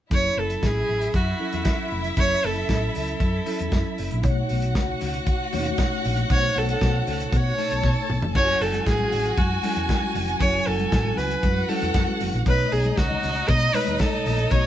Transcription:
0.10 fingered electric bass F#1, tine electric piano F#3 C#4 E4 A4, violin section E4 E5, viola C#5, kick, closed hi-hat
0.37 fingered electric bass F#1, viola A4
0.50 closed hi-hat
0.63 fingered electric bass A1, viola G#4, kick, snare, closed hi-hat
0.89 fingered electric bass A1
1.01 closed hi-hat
1.14 fingered electric bass F#2, viola F#4, kick, closed hi-hat
1.39 tine electric piano F#3 C#4 E4 A4
1.52 fingered electric bass E2, closed hi-hat
1.65 kick, snare, closed hi-hat
1.92 fingered electric bass F1
2.04 closed hi-hat
2.16 fingered electric bass F#1, tine electric piano F#3 C#4 E4 A4, viola C#5, kick, closed hi-hat
2.43 fingered electric bass F#1, viola A4, open hi-hat
2.56 closed hi-hat
2.69 fingered electric bass A1, kick, snare, closed hi-hat
2.95 fingered electric bass C#2, viola A4, open hi-hat
3.07 closed hi-hat
3.20 fingered electric bass F#2, kick, closed hi-hat
3.45 tine electric piano F#3 C#4 E4 A4, open hi-hat
3.59 fingered electric bass E2, closed hi-hat
3.72 fingered electric bass F#2, kick, snare, closed hi-hat
3.98 fingered electric bass F#1, open hi-hat
4.11 fingered electric bass A#1, closed hi-hat
4.22 fingered electric bass B1, tine electric piano B2 A3 D#4 C#5, violin section F#4 F#5, kick, closed hi-hat
4.49 fingered electric bass B1, open hi-hat
4.62 closed hi-hat
4.75 fingered electric bass C#2, kick, snare, closed hi-hat
5.01 fingered electric bass C#2, snare, open hi-hat
5.14 closed hi-hat
5.27 kick, closed hi-hat
5.53 fingered electric bass D#2, tine electric piano B2 A3 C#4 C#5, open hi-hat
5.60 tine electric piano D#4
5.65 closed hi-hat
5.78 kick, snare, closed hi-hat
6.05 fingered electric bass A#1, open hi-hat
6.17 closed hi-hat
6.30 fingered electric bass B1, tine electric piano B2 A3 D#4 C5, viola C#5, kick, closed hi-hat
6.37 tine electric piano C#5
6.56 fingered electric bass B1, viola A4, open hi-hat
6.69 viola A4, closed hi-hat
6.81 fingered electric bass B1, kick, snare, closed hi-hat
7.07 fingered electric bass C#2, viola A4, open hi-hat
7.20 closed hi-hat
7.32 fingered electric bass B2, viola C#5, kick, closed hi-hat
7.58 tine electric piano B2 A3 D#4 C#5, violin section A4 A5, open hi-hat
7.71 fingered electric bass B1, closed hi-hat
7.84 fingered electric bass B2, kick, snare
8.10 fingered electric bass B1, mid tom
8.22 fingered electric bass F1, floor tom
8.34 fingered electric bass F#1, tine electric piano F#3 C#4 E4 A4, violin section F#4 G#5, viola C#5, kick, crash, muted conga
8.48 muted conga
8.61 fingered electric bass F#1, viola A4, open hi-hat
8.73 closed hi-hat, high conga
8.87 fingered electric bass A1, viola G#4, kick, snare, closed hi-hat
8.99 muted conga, high conga, low conga
9.12 fingered electric bass A1, open hi-hat, low conga
9.25 closed hi-hat
9.37 fingered electric bass F#2, viola F#4, kick, closed hi-hat, high conga
9.63 tine electric piano F#3 C#4 E4 A4, open hi-hat, high conga
9.76 fingered electric bass E2, closed hi-hat, high conga
9.89 kick, snare, closed hi-hat
10.02 high conga
10.15 fingered electric bass F1, open hi-hat, low conga
10.28 closed hi-hat
10.40 fingered electric bass F#1, tine electric piano F#3 C#4 E4 A4, viola C#5, kick, closed hi-hat, muted conga
10.67 fingered electric bass F#1, viola A4, open hi-hat
10.79 closed hi-hat, high conga
10.92 fingered electric bass A1, kick, snare, closed hi-hat, muted conga
11.05 high conga, low conga
11.17 fingered electric bass C#2, viola B4, snare, open hi-hat, low conga
11.31 closed hi-hat
11.43 fingered electric bass F#2, violin section F#4 F#5, kick, closed hi-hat, muted conga, high conga
11.69 tine electric piano F#3 C#4 E4 A4, viola A4, open hi-hat, high conga
11.76 tine electric piano B4
11.82 fingered electric bass E2, closed hi-hat, high conga
11.94 fingered electric bass F#2, kick, snare, closed hi-hat, muted conga
12.08 muted conga, high conga
12.20 fingered electric bass F#1, open hi-hat, low conga
12.33 fingered electric bass A#1, closed hi-hat
12.46 fingered electric bass B1, tine electric piano B2 A3 D#4 C#5, violin section D#4 D#5, viola B4, kick, closed hi-hat, muted conga
12.72 fingered electric bass B1, viola G#4, open hi-hat
12.84 closed hi-hat, high conga
12.97 fingered electric bass C#2, viola F#4, kick, snare, closed hi-hat, muted conga
13.10 muted conga, high conga, low conga
13.23 fingered electric bass C#2, snare, open hi-hat, low conga
13.36 closed hi-hat
13.48 fingered electric bass B2, viola D#5, kick, closed hi-hat, muted conga, high conga
13.61 muted conga
13.74 tine electric piano B2 A3 D#4 C#5, viola B4, open hi-hat, high conga
13.86 fingered electric bass D#2, closed hi-hat, high conga
13.99 viola A4, kick, snare, closed hi-hat, muted conga
14.13 high conga
14.25 fingered electric bass A#1, open hi-hat, low conga
14.39 closed hi-hat
14.51 fingered electric bass B1, tine electric piano B2 A3 D#4 F#4, viola C#5, kick, closed hi-hat, muted conga

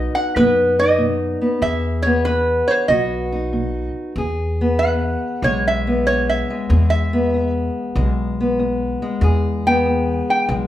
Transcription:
Already playing: steel-string acoustic guitar B2 B3 D#4 F#4, resonator guitar played with a steel bar D#5
0.15 resonator guitar played with a steel bar F#5
0.36 upright bass F#2, steel-string acoustic guitar B2 B3, resonator guitar played with a steel bar B4
0.79 steel-string acoustic guitar D#4, resonator guitar played with a steel bar D#5
0.98 steel-string acoustic guitar B2
1.41 steel-string acoustic guitar B3
1.62 steel-string acoustic guitar E2 G#4, upright bass E2, resonator guitar played with a steel bar E5
2.02 steel-string acoustic guitar B3, resonator guitar played with a steel bar C#5
2.25 steel-string acoustic guitar E2, resonator guitar played with a steel bar B4
2.68 resonator guitar played with a steel bar C5 C#5
2.88 upright bass B1, steel-string acoustic guitar B2 F#4, resonator guitar played with a steel bar D#5
3.32 steel-string acoustic guitar D#4
3.53 steel-string acoustic guitar B2
4.16 upright bass E2, steel-string acoustic guitar E2 G#4
4.61 steel-string acoustic guitar B3
4.79 steel-string acoustic guitar E2, resonator guitar played with a steel bar F#5
5.42 upright bass B1, steel-string acoustic guitar E2 G#3, resonator guitar played with a steel bar C#5
5.68 resonator guitar played with a steel bar E5
5.87 steel-string acoustic guitar B3
6.07 steel-string acoustic guitar E2, resonator guitar played with a steel bar C#5
6.29 resonator guitar played with a steel bar E5
6.50 steel-string acoustic guitar G#3
6.69 steel-string acoustic guitar E2 G#4, upright bass E2
6.90 resonator guitar played with a steel bar E5
7.13 steel-string acoustic guitar B3
7.34 steel-string acoustic guitar E2
7.95 upright bass B1, steel-string acoustic guitar E2 G#3
8.41 steel-string acoustic guitar B3
8.59 steel-string acoustic guitar E2
9.02 steel-string acoustic guitar G#3
9.21 upright bass E2, steel-string acoustic guitar E2 G#4
9.67 steel-string acoustic guitar B3, resonator guitar played with a steel bar G5
9.86 steel-string acoustic guitar E2
10.30 resonator guitar played with a steel bar G5
10.49 upright bass B1, steel-string acoustic guitar E2 G#3

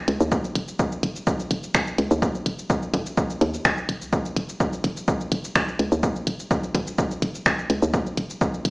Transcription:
0.08 fm bass C#2, closed hi-hat
0.20 fm bass D#2, cabasa
0.32 kick, cabasa
0.44 cabasa
0.55 fm bass D#1, closed hi-hat
0.68 cabasa
0.79 kick, cabasa
0.92 cabasa
1.03 fm bass D#1, closed hi-hat
1.16 cabasa
1.27 kick, cabasa
1.40 cabasa
1.51 fm bass D#1, closed hi-hat
1.63 cabasa
1.75 finger snap, kick, cabasa
1.87 cabasa
1.98 fm bass C#2, closed hi-hat
2.11 fm bass D#2, cabasa
2.22 kick, cabasa
2.35 cabasa
2.46 fm bass D#1, closed hi-hat
2.59 cabasa
2.70 kick, cabasa
2.82 cabasa
2.94 fm bass D#1, kick, closed hi-hat
3.06 cabasa
3.17 kick, cabasa
3.30 cabasa
3.41 fm bass D#2, closed hi-hat
3.54 cabasa
3.65 finger snap, kick, cabasa
3.78 cabasa
3.89 fm bass D#1, closed hi-hat
4.01 fm bass C#2, cabasa
4.13 kick, cabasa
4.25 cabasa
4.36 fm bass D#1, closed hi-hat
4.49 cabasa
4.60 kick, cabasa
4.73 cabasa
4.84 fm bass D#1, closed hi-hat
4.97 cabasa
5.08 kick, cabasa
5.21 cabasa
5.32 fm bass D#1, closed hi-hat
5.44 cabasa
5.55 finger snap, kick, cabasa
5.68 cabasa
5.79 fm bass C#2, closed hi-hat
5.92 fm bass D#2, cabasa
6.03 kick, cabasa
6.16 cabasa
6.27 fm bass D#1, closed hi-hat
6.40 cabasa
6.51 kick, cabasa
6.63 cabasa
6.75 fm bass D#1, kick, closed hi-hat
6.87 cabasa
6.98 kick, cabasa
7.11 cabasa
7.22 fm bass D#1, closed hi-hat
7.35 cabasa
7.46 finger snap, kick, cabasa
7.59 cabasa
7.70 fm bass C#2, closed hi-hat
7.82 fm bass D#2, cabasa
7.94 kick, cabasa
8.06 cabasa
8.17 fm bass D#1, closed hi-hat
8.30 cabasa
8.41 kick, cabasa
8.54 cabasa
8.65 fm bass D#1, closed hi-hat

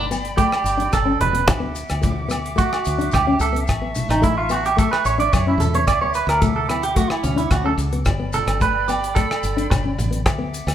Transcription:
Already playing: fingered electric bass G1, flute section D5 G5 B5
0.11 nylon-string guitar B3, closed hi-hat, low agogo, maracas
0.25 closed hi-hat, maracas
0.37 nylon-string guitar A3, clean electric guitar G4, kick, closed hi-hat, muted conga, maracas
0.52 cross-stick, low agogo
0.64 fingered electric bass G1, closed hi-hat, muted conga, maracas
0.78 nylon-string guitar D4, closed hi-hat, maracas
0.93 fingered electric bass G1, clean electric guitar A4, kick, cross-stick, closed hi-hat, high conga, low agogo, maracas
1.06 nylon-string guitar C#4
1.20 fingered electric bass E1, clean electric guitar B4, closed hi-hat, muted conga, high conga, low conga
1.33 nylon-string guitar B3, closed hi-hat, maracas
1.48 fingered electric bass D2, flute section E5 F#5 D6, kick, cross-stick, closed hi-hat, muted conga, low agogo, maracas
1.60 nylon-string guitar B3
1.75 closed hi-hat, maracas
1.88 fingered electric bass D2, cross-stick, closed hi-hat, low agogo, maracas
2.02 nylon-string guitar A3, kick, closed hi-hat, high conga, maracas
2.29 nylon-string guitar B3, cross-stick, closed hi-hat, low agogo, maracas
2.45 closed hi-hat, maracas
2.56 nylon-string guitar A3, clean electric guitar F#4, kick, closed hi-hat, muted conga, maracas
2.73 cross-stick, low agogo
2.85 fingered electric bass D2, closed hi-hat, maracas
2.98 nylon-string guitar D4, closed hi-hat, maracas
3.12 fingered electric bass D2, clean electric guitar G4, kick, cross-stick, closed hi-hat, high conga, low agogo, maracas
3.27 nylon-string guitar C#4
3.40 fingered electric bass C#2, clean electric guitar A4, closed hi-hat, muted conga, maracas
3.53 nylon-string guitar B3, closed hi-hat, maracas
3.67 fingered electric bass A1, flute section A5 C#6, kick, cross-stick, closed hi-hat, muted conga, low agogo, maracas
3.82 nylon-string guitar B3
3.95 closed hi-hat, high conga, maracas
4.09 fingered electric bass A1, clean electric guitar D#4, cross-stick, closed hi-hat, low agogo, maracas
4.22 nylon-string guitar A3, clean electric guitar E4, kick, closed hi-hat, maracas
4.38 clean electric guitar F4
4.49 nylon-string guitar B3, clean electric guitar F#4, closed hi-hat, low agogo, maracas
4.64 clean electric guitar G4, closed hi-hat, maracas
4.77 nylon-string guitar A3, clean electric guitar A4, kick, closed hi-hat, muted conga, maracas
4.91 clean electric guitar B4, cross-stick, low agogo
5.05 fingered electric bass A1, clean electric guitar C#5, closed hi-hat, muted conga, maracas
5.18 nylon-string guitar D4, clean electric guitar D5, closed hi-hat, maracas
5.32 fingered electric bass F#2, clean electric guitar C#5, kick, cross-stick, closed hi-hat, high conga, low agogo, maracas
5.47 nylon-string guitar C#4, clean electric guitar E4
5.58 fingered electric bass E2, clean electric guitar A4, closed hi-hat, muted conga, high conga, low conga, maracas
5.74 nylon-string guitar B3, clean electric guitar C#5, closed hi-hat, maracas
5.87 fingered electric bass D2, clean electric guitar D5, flute section F#5 D6, kick, cross-stick, closed hi-hat, muted conga, low agogo, maracas
6.01 nylon-string guitar B3, clean electric guitar C#5
6.14 clean electric guitar B4, closed hi-hat, maracas
6.27 fingered electric bass D2, clean electric guitar A#4, cross-stick, closed hi-hat, low agogo, maracas
6.41 nylon-string guitar A3, clean electric guitar A4, kick, closed hi-hat, high conga, maracas
6.56 clean electric guitar A4
6.69 nylon-string guitar B3, clean electric guitar E4, cross-stick, closed hi-hat, low agogo
6.82 clean electric guitar G4, closed hi-hat, maracas
6.96 nylon-string guitar A3, clean electric guitar F#4, kick, closed hi-hat, maracas
7.10 clean electric guitar E4, cross-stick, low agogo
7.23 fingered electric bass D2, clean electric guitar C#4, closed hi-hat, muted conga, high conga, maracas
7.36 nylon-string guitar D4, clean electric guitar E4, closed hi-hat, maracas
7.51 fingered electric bass D2, clean electric guitar F#4, kick, cross-stick, closed hi-hat, high conga, low agogo, maracas
7.65 nylon-string guitar C#4, clean electric guitar A4
7.78 fingered electric bass C#2, closed hi-hat, muted conga, maracas
7.92 nylon-string guitar B3, closed hi-hat, maracas
8.05 fingered electric bass G1, flute section D5 G5 B5, kick, cross-stick, closed hi-hat, low agogo, maracas
8.20 nylon-string guitar B3
8.33 clean electric guitar A4, closed hi-hat, high conga, maracas
8.47 fingered electric bass G1, cross-stick, closed hi-hat, low agogo, maracas
8.60 nylon-string guitar A3, clean electric guitar B4, kick, closed hi-hat, maracas
8.88 nylon-string guitar B3, clean electric guitar G4, closed hi-hat, low agogo, maracas
9.03 closed hi-hat, maracas
9.15 nylon-string guitar A3, clean electric guitar A4, kick, closed hi-hat, muted conga, maracas
9.31 cross-stick, low agogo
9.43 fingered electric bass G1, closed hi-hat, muted conga, maracas
9.57 nylon-string guitar D4, closed hi-hat, maracas
9.70 fingered electric bass G1, muted clean electric guitar stroke, kick, cross-stick, closed hi-hat, high conga, low agogo, maracas
9.84 nylon-string guitar C#4
9.98 fingered electric bass A1, closed hi-hat, muted conga, high conga, low conga, maracas
10.11 nylon-string guitar B3, closed hi-hat, maracas
10.24 fingered electric bass D2, flute section E5 F#5 D6, kick, cross-stick, closed hi-hat, low agogo, maracas
10.39 nylon-string guitar B3
10.54 closed hi-hat, maracas
10.67 fingered electric bass D2, cross-stick, closed hi-hat, low agogo, maracas

